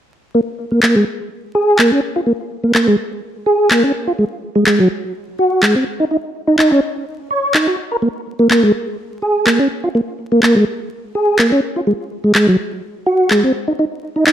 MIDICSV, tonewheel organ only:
0, 0, Header, 1, 2, 480
1, 0, Start_track
1, 0, Key_signature, -5, "minor"
1, 0, Tempo, 480000
1, 346, Time_signature, 4, 2, 24, 8
1, 14324, End_track
2, 0, Start_track
2, 0, Title_t, "Tonewheel organ"
2, 0, Program_c, 0, 16
2, 346, Note_on_c, 0, 58, 75
2, 407, Note_off_c, 0, 58, 0
2, 716, Note_on_c, 0, 58, 91
2, 801, Note_off_c, 0, 58, 0
2, 831, Note_on_c, 0, 58, 74
2, 952, Note_off_c, 0, 58, 0
2, 959, Note_on_c, 0, 56, 93
2, 1043, Note_off_c, 0, 56, 0
2, 1549, Note_on_c, 0, 68, 71
2, 1776, Note_off_c, 0, 68, 0
2, 1789, Note_on_c, 0, 58, 77
2, 1912, Note_off_c, 0, 58, 0
2, 1920, Note_on_c, 0, 61, 69
2, 2003, Note_off_c, 0, 61, 0
2, 2160, Note_on_c, 0, 65, 70
2, 2209, Note_off_c, 0, 65, 0
2, 2265, Note_on_c, 0, 58, 74
2, 2327, Note_off_c, 0, 58, 0
2, 2636, Note_on_c, 0, 58, 92
2, 2722, Note_off_c, 0, 58, 0
2, 2746, Note_on_c, 0, 58, 77
2, 2870, Note_off_c, 0, 58, 0
2, 2876, Note_on_c, 0, 56, 93
2, 2962, Note_off_c, 0, 56, 0
2, 3462, Note_on_c, 0, 68, 76
2, 3693, Note_off_c, 0, 68, 0
2, 3707, Note_on_c, 0, 58, 79
2, 3831, Note_off_c, 0, 58, 0
2, 3836, Note_on_c, 0, 61, 73
2, 3921, Note_off_c, 0, 61, 0
2, 4074, Note_on_c, 0, 65, 72
2, 4126, Note_off_c, 0, 65, 0
2, 4186, Note_on_c, 0, 56, 75
2, 4247, Note_off_c, 0, 56, 0
2, 4555, Note_on_c, 0, 56, 97
2, 4641, Note_off_c, 0, 56, 0
2, 4667, Note_on_c, 0, 56, 76
2, 4791, Note_off_c, 0, 56, 0
2, 4799, Note_on_c, 0, 54, 95
2, 4883, Note_off_c, 0, 54, 0
2, 5388, Note_on_c, 0, 66, 74
2, 5616, Note_off_c, 0, 66, 0
2, 5624, Note_on_c, 0, 56, 75
2, 5749, Note_off_c, 0, 56, 0
2, 5758, Note_on_c, 0, 60, 74
2, 5842, Note_off_c, 0, 60, 0
2, 5999, Note_on_c, 0, 63, 73
2, 6049, Note_off_c, 0, 63, 0
2, 6109, Note_on_c, 0, 63, 75
2, 6169, Note_off_c, 0, 63, 0
2, 6475, Note_on_c, 0, 63, 91
2, 6561, Note_off_c, 0, 63, 0
2, 6584, Note_on_c, 0, 63, 81
2, 6709, Note_off_c, 0, 63, 0
2, 6718, Note_on_c, 0, 61, 101
2, 6802, Note_off_c, 0, 61, 0
2, 7306, Note_on_c, 0, 73, 73
2, 7535, Note_off_c, 0, 73, 0
2, 7545, Note_on_c, 0, 63, 78
2, 7670, Note_off_c, 0, 63, 0
2, 7676, Note_on_c, 0, 66, 73
2, 7762, Note_off_c, 0, 66, 0
2, 7915, Note_on_c, 0, 70, 69
2, 7967, Note_off_c, 0, 70, 0
2, 8022, Note_on_c, 0, 58, 77
2, 8085, Note_off_c, 0, 58, 0
2, 8392, Note_on_c, 0, 58, 96
2, 8480, Note_off_c, 0, 58, 0
2, 8501, Note_on_c, 0, 58, 74
2, 8628, Note_off_c, 0, 58, 0
2, 8632, Note_on_c, 0, 56, 95
2, 8720, Note_off_c, 0, 56, 0
2, 9222, Note_on_c, 0, 68, 69
2, 9453, Note_off_c, 0, 68, 0
2, 9463, Note_on_c, 0, 58, 76
2, 9588, Note_off_c, 0, 58, 0
2, 9594, Note_on_c, 0, 61, 70
2, 9680, Note_off_c, 0, 61, 0
2, 9837, Note_on_c, 0, 65, 69
2, 9888, Note_off_c, 0, 65, 0
2, 9949, Note_on_c, 0, 58, 79
2, 10008, Note_off_c, 0, 58, 0
2, 10318, Note_on_c, 0, 58, 97
2, 10402, Note_off_c, 0, 58, 0
2, 10426, Note_on_c, 0, 58, 79
2, 10550, Note_off_c, 0, 58, 0
2, 10560, Note_on_c, 0, 56, 97
2, 10644, Note_off_c, 0, 56, 0
2, 11151, Note_on_c, 0, 68, 72
2, 11378, Note_off_c, 0, 68, 0
2, 11391, Note_on_c, 0, 58, 77
2, 11513, Note_off_c, 0, 58, 0
2, 11522, Note_on_c, 0, 61, 73
2, 11605, Note_off_c, 0, 61, 0
2, 11762, Note_on_c, 0, 65, 72
2, 11810, Note_off_c, 0, 65, 0
2, 11871, Note_on_c, 0, 56, 72
2, 11929, Note_off_c, 0, 56, 0
2, 12239, Note_on_c, 0, 56, 94
2, 12323, Note_off_c, 0, 56, 0
2, 12348, Note_on_c, 0, 56, 78
2, 12471, Note_off_c, 0, 56, 0
2, 12483, Note_on_c, 0, 54, 100
2, 12565, Note_off_c, 0, 54, 0
2, 13064, Note_on_c, 0, 66, 73
2, 13294, Note_off_c, 0, 66, 0
2, 13310, Note_on_c, 0, 56, 80
2, 13432, Note_off_c, 0, 56, 0
2, 13438, Note_on_c, 0, 60, 72
2, 13523, Note_off_c, 0, 60, 0
2, 13677, Note_on_c, 0, 63, 68
2, 13728, Note_off_c, 0, 63, 0
2, 13791, Note_on_c, 0, 63, 75
2, 13849, Note_off_c, 0, 63, 0
2, 14159, Note_on_c, 0, 63, 95
2, 14243, Note_off_c, 0, 63, 0
2, 14265, Note_on_c, 0, 63, 78
2, 14324, Note_off_c, 0, 63, 0
2, 14324, End_track
0, 0, End_of_file